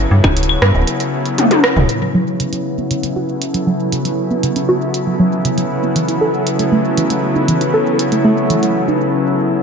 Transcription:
Already playing: analog synth pad C#3 F#3 B3 E4 A4
0.11 fm bass G2
0.24 fm bass D1, kick, percussion blips, claves
0.37 closed hi-hat
0.43 closed hi-hat
0.49 claves
0.62 fm bass G2, cross-stick
0.75 fm bass D1
0.87 closed hi-hat
1.00 closed hi-hat
1.26 closed hi-hat
1.38 closed hi-hat, high tom
1.51 closed hi-hat, high tom
1.64 cross-stick
1.76 fm bass D1, mid tom
1.89 closed hi-hat
2.02 synth arpeggio sound F#3
2.15 synth arpeggio sound F#3
2.40 synth arpeggio sound C#3, closed hi-hat
2.53 synth arpeggio sound F#3, closed hi-hat
2.78 synth arpeggio sound B3
2.91 synth arpeggio sound C#3, closed hi-hat
3.03 synth arpeggio sound C#4, closed hi-hat
3.16 synth arpeggio sound F#4
3.27 analog synth pad A4
3.42 closed hi-hat
3.54 synth arpeggio sound F#3, closed hi-hat
3.67 synth arpeggio sound F#3
3.92 synth arpeggio sound C#3, closed hi-hat
4.05 synth arpeggio sound F#3, closed hi-hat
4.31 synth arpeggio sound B3
4.43 synth arpeggio sound C#3, closed hi-hat
4.56 synth arpeggio sound C#4, closed hi-hat
4.69 synth arpeggio sound F#4
4.94 closed hi-hat
5.07 synth arpeggio sound F#3
5.20 synth arpeggio sound F#3
5.45 synth arpeggio sound C#3, closed hi-hat
5.58 synth arpeggio sound F#3, closed hi-hat
5.83 synth arpeggio sound B3
5.96 synth arpeggio sound E3, closed hi-hat
6.09 synth arpeggio sound E4, closed hi-hat
6.21 synth arpeggio sound A4
6.47 closed hi-hat
6.59 synth arpeggio sound A3, closed hi-hat
6.72 synth arpeggio sound A3
6.98 synth arpeggio sound E3, closed hi-hat
7.10 synth arpeggio sound A3, closed hi-hat
7.36 synth arpeggio sound D#4
7.48 synth arpeggio sound E3, closed hi-hat
7.61 synth arpeggio sound E4, closed hi-hat
7.74 synth arpeggio sound A4
7.99 closed hi-hat
8.12 synth arpeggio sound A3, closed hi-hat
8.25 synth arpeggio sound A3
8.50 synth arpeggio sound E3, closed hi-hat
8.63 synth arpeggio sound A3, closed hi-hat
8.88 synth arpeggio sound D#4

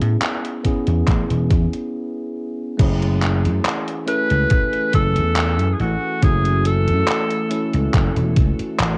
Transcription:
Already playing: tine electric piano B3 C#4 E4 G#4
0.01 slap bass A2, closed hi-hat
0.22 clap, closed hi-hat
0.45 closed hi-hat
0.63 tine electric piano B3 C#4 E4 G#4, kick, closed hi-hat
0.87 slap bass E2, closed hi-hat
1.07 slap bass A1, kick, clap, closed hi-hat
1.30 slap bass E1, closed hi-hat
1.51 slap bass E2, kick, closed hi-hat
1.73 closed hi-hat
2.77 slap bass F#1, ambient pad E3 A3 F#4 G#5, tine electric piano A3 C#4 E4 G#4, kick, closed hi-hat, crash
3.02 closed hi-hat
3.22 clap, closed hi-hat
3.45 slap bass F#2, closed hi-hat
3.65 clap, closed hi-hat
3.88 closed hi-hat
4.06 tine electric piano A3 C#4 E4 A4, alto saxophone B4, closed hi-hat
4.30 slap bass C#2, closed hi-hat
4.50 kick, closed hi-hat
4.73 closed hi-hat
4.93 slap bass F#1, alto saxophone A4, kick, closed hi-hat
5.16 slap bass E2, closed hi-hat
5.36 clap, closed hi-hat
5.59 slap bass F#2, closed hi-hat
5.74 alto saxophone G#4
5.80 slap bass A1, alto saxophone F#4, closed hi-hat
6.21 slap bass F#1, tine electric piano A3 C#4 E4 F#4, alto saxophone G#4, kick, closed hi-hat
6.45 closed hi-hat
6.65 alto saxophone A4, closed hi-hat
6.88 slap bass F#2, closed hi-hat
7.08 clap, closed hi-hat
7.31 closed hi-hat
7.50 tine electric piano A3 C#4 E4 A4, closed hi-hat
7.74 slap bass C#2, closed hi-hat
7.94 slap bass F#1, kick, clap, closed hi-hat
8.16 slap bass E1, closed hi-hat
8.36 slap bass C#2, kick, closed hi-hat
8.59 muted slap bass stroke, closed hi-hat
8.79 slap bass A1, clap, closed hi-hat

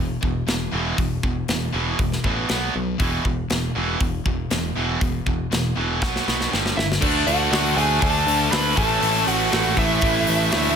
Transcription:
Already playing: picked electric bass E1, distorted electric guitar E2 B2
0.21 picked electric bass E1, distorted electric guitar E2 B2, kick
0.47 picked electric bass E1, distorted electric guitar E2 B2, snare, open hi-hat
0.72 picked electric bass E1, distorted electric guitar E2 B2 E3
0.98 picked electric bass E1, distorted electric guitar E2 B2, kick, open hi-hat
1.23 picked electric bass E1, distorted electric guitar E2 B2, kick
1.48 picked electric bass E1, distorted electric guitar E2 B2, snare, open hi-hat
1.73 picked electric bass E1, distorted electric guitar E2 B2 E3
1.99 picked electric bass E1, distorted electric guitar E2 B2, kick, open hi-hat
2.12 snare
2.24 picked electric bass A1, distorted electric guitar E2 B2 E3, kick
2.48 picked electric bass B1, distorted electric guitar B2 F#3 B3, snare, open hi-hat
2.74 picked electric bass B1, distorted electric guitar B2 F#3
2.98 picked electric bass E1, distorted electric guitar E2 B2 E3, kick, open hi-hat
3.24 picked electric bass E1, distorted electric guitar E2 B2, kick
3.50 picked electric bass E1, distorted electric guitar E2 B2, snare, open hi-hat
3.75 picked electric bass E1, distorted electric guitar E2 B2 E3
4.00 picked electric bass E1, distorted electric guitar E2 B2, kick, open hi-hat
4.26 picked electric bass E1, distorted electric guitar E2 B2, kick
4.50 picked electric bass E1, distorted electric guitar E2 B2, snare, open hi-hat
4.76 picked electric bass E1, distorted electric guitar E2 B2 E3
5.01 picked electric bass E1, distorted electric guitar E2 B2, kick, open hi-hat
5.26 picked electric bass E1, distorted electric guitar E2 B2, kick
5.51 picked electric bass E1, distorted electric guitar E2 B2, snare, open hi-hat
5.75 picked electric bass E1, distorted electric guitar E2 B2 E3
6.01 picked electric bass B1, distorted electric guitar B2 F#3 B3, kick, snare
6.16 snare
6.26 picked electric bass B1, distorted electric guitar B2 F#3 B3, snare
6.41 snare
6.51 picked electric bass G1, distorted electric guitar G2 D3 G3, snare
6.66 snare
6.76 picked electric bass G1, distorted electric guitar G2 D3, lead electric guitar E4 E5, snare
6.92 snare
7.01 picked electric bass D2, distorted electric guitar D3 A3 D4 F#4 A4, lead electric guitar D4 D5, kick, crash
7.27 picked electric bass D2, lead electric guitar F#4 F#5, open hi-hat
7.51 picked electric bass D2, distorted electric guitar D3 A3 D4, snare, open hi-hat
7.75 picked electric bass D2, distorted electric guitar D3 A3 D4, lead electric guitar G#4 G#5, open hi-hat
8.00 picked electric bass D2, distorted electric guitar D3 A3 D4, lead electric guitar A4 A5, kick, open hi-hat
8.27 picked electric bass D2, open hi-hat
8.50 picked electric bass D2, distorted electric guitar D3 A3 D4, lead electric guitar B4 B5, snare, open hi-hat
8.75 picked electric bass A1, distorted electric guitar A2 E3 A3 C#4, lead electric guitar A4 A5, kick, open hi-hat
8.79 distorted electric guitar E4
8.99 picked electric bass A1, distorted electric guitar A2 E3 A3, open hi-hat
9.27 picked electric bass A1, lead electric guitar F#4 F#5, open hi-hat
9.50 picked electric bass A1, distorted electric guitar A2 E3 A3, snare, open hi-hat
9.76 picked electric bass A1, distorted electric guitar A2 E3 A3, lead electric guitar E4 E5, kick, open hi-hat
10.00 picked electric bass A1, distorted electric guitar A2 E3 A3, kick, open hi-hat
10.27 picked electric bass A1, open hi-hat
10.51 picked electric bass D2, distorted electric guitar A2 E3 A3 C#4, snare, open hi-hat
10.56 distorted electric guitar E4

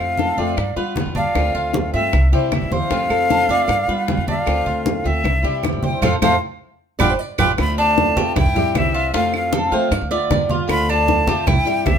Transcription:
Already playing: steel-string acoustic guitar C3 F3 A3 C4 F4, cuban tres F4, flute F5
0.00 upright bass F2
0.18 cuban tres A4, high bongo, high conga
0.37 upright bass F2, steel-string acoustic guitar F3 A3 C4 F4, cuban tres D5, high bongo, high conga
0.57 upright bass G2, muted steel-string acoustic guitar stroke, high bongo, high conga, claves
0.76 upright bass G3, steel-string acoustic guitar B3 F4, cuban tres B4, high bongo, high conga
0.96 steel-string acoustic guitar G3 B3 F4, high bongo, low bongo, high conga
1.06 upright bass F2
1.15 upright bass G2, cuban tres D4, flute F5, high conga
1.35 upright bass D2, steel-string acoustic guitar D3 A3 C4 F4, high bongo, high conga, claves
1.55 upright bass D2, cuban tres F4, high conga
1.74 high bongo, high conga
1.93 upright bass G2, steel-string acoustic guitar A3 C4 F4, cuban tres E5, flute E5, high bongo, high conga
2.13 upright bass C2, muted steel-string acoustic guitar stroke, high bongo, high conga, claves
2.33 upright bass C3, steel-string acoustic guitar E3 G3 C4 E4, cuban tres G4, flute C5, high bongo, high conga
2.52 steel-string acoustic guitar E3 G3 C4 E4, flute E5, high bongo, low bongo, high conga, claves
2.62 upright bass A1
2.71 upright bass E2, cuban tres C5, flute F5, high bongo, high conga
2.90 upright bass F2, steel-string acoustic guitar C3 F3 A3 C4 F4, cuban tres F4, high bongo, high conga
3.10 upright bass F2, nylon-string guitar A4, high conga, claves
3.30 cuban tres A4, high bongo, high conga
3.49 upright bass F2, steel-string acoustic guitar F3 A3 C4 F4, cuban tres D5, nylon-string guitar E5, high bongo, high conga
3.68 upright bass G2, nylon-string guitar D5, muted steel-string acoustic guitar stroke, high bongo, high conga, claves
3.88 upright bass G3, steel-string acoustic guitar B3 F4, cuban tres B4, high bongo, high conga
4.07 steel-string acoustic guitar G3 B3 F4, high bongo, low bongo, high conga
4.17 upright bass F2
4.27 upright bass G2, cuban tres D4, flute F5, high conga
4.46 upright bass D2, steel-string acoustic guitar D3 A3 C4 F4, high bongo, high conga, claves
4.66 upright bass D2, cuban tres F4, high conga
4.86 high bongo, high conga
5.04 upright bass D2, steel-string acoustic guitar A3 C4 F4, cuban tres E5, flute E5, high bongo, high conga
5.24 upright bass C2, muted steel-string acoustic guitar stroke, high bongo, high conga, claves
5.43 upright bass C3, steel-string acoustic guitar E3 G3 C4 E4, cuban tres G4, high bongo, high conga
5.63 steel-string acoustic guitar E3 G3 C4 E4, high bongo, low bongo, high conga, claves
5.72 upright bass A1
5.83 upright bass C2, cuban tres C5, flute G5, high bongo, high conga
6.02 upright bass F2, steel-string acoustic guitar F3 A3 C4, cuban tres F4 A4 C5, flute F5, low bongo, low conga, claves
6.22 upright bass F2, steel-string acoustic guitar F3 A3 C4, cuban tres F4 A4 C5, flute F5, low bongo, low conga, claves
6.99 upright bass G1, steel-string acoustic guitar G3 B3 D4, cuban tres F4 G4 B4, nylon-string guitar D5, flute G5, low bongo, low conga, claves
7.09 nylon-string guitar C5
7.19 nylon-string guitar D5
7.38 upright bass G1, steel-string acoustic guitar G3 B3 D4, cuban tres F4 G4 B4, flute G5, low bongo, low conga, claves
7.58 upright bass D2, steel-string acoustic guitar D3 A3 C4 F4, flute B5, high bongo, high conga, claves
7.78 cuban tres D4, flute A5, high conga
7.98 high bongo, high conga
8.16 upright bass D3, steel-string acoustic guitar A3 C4 F4, cuban tres G4, high conga
8.36 upright bass C2, cuban tres E4, flute G5, muted steel-string acoustic guitar stroke, high bongo, high conga, low conga, claves
8.46 upright bass G2
8.55 steel-string acoustic guitar E3 G3 C4 E4, cuban tres G4, high conga, low conga
8.74 upright bass C2, steel-string acoustic guitar E3 G3 C4 E4, flute E5, high bongo, low bongo, high conga, claves
8.94 cuban tres F4, high conga
9.13 upright bass F2, steel-string acoustic guitar C3 F3 A3 C4 F4, cuban tres F4, flute F5, high bongo, high conga
9.33 flute F5, high bongo, high conga, claves
9.53 cuban tres A4, high bongo, high conga
9.71 upright bass F3, steel-string acoustic guitar F3 A3 C4 F4, nylon-string guitar C5, cuban tres F5, high bongo
9.91 upright bass G2, nylon-string guitar D5, muted steel-string acoustic guitar stroke, high bongo, high conga, claves
10.02 upright bass D2
10.11 steel-string acoustic guitar B3 F4, cuban tres D5, nylon-string guitar E5, high bongo, high conga
10.30 upright bass G2, steel-string acoustic guitar G3 B3 F4, nylon-string guitar D5, high bongo, low bongo, high conga
10.49 cuban tres F4, high conga
10.67 upright bass D2, steel-string acoustic guitar D3 A3 C4 F4, flute B5, high bongo, high conga, claves
10.88 cuban tres D4, flute A5, high conga
11.08 high bongo, high conga
11.27 upright bass D3, steel-string acoustic guitar A3 C4 F4, cuban tres G4, high conga
11.47 upright bass C2, cuban tres E4, flute G5, muted steel-string acoustic guitar stroke, high bongo, high conga, low conga, claves
11.56 upright bass G2
11.65 steel-string acoustic guitar E3 G3 C4 E4, cuban tres G4, high conga
11.85 upright bass C2, steel-string acoustic guitar E3 G3 C4 E4, flute E5, high bongo, low bongo, high conga, claves

